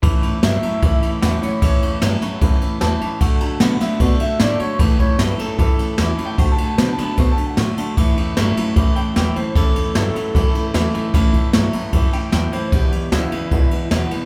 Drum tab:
RD |xxxxxxxx|xxxxxxxx|xxxxxxxx|xxxxxxxx|
SD |--o---o-|--oo--o-|--oo--o-|--o---o-|
BD |o---o---|o---o---|o---o---|oo--o---|

RD |xxxxxxxx|xxxxxxxx|xxxxxxxx|xxxxxxxx|
SD |--oo--o-|--o---o-|--o---o-|--o---o-|
BD |o---o---|o---o---|o---o---|oo--o---|

RD |xxxxxxxx|
SD |--o---o-|
BD |o---o---|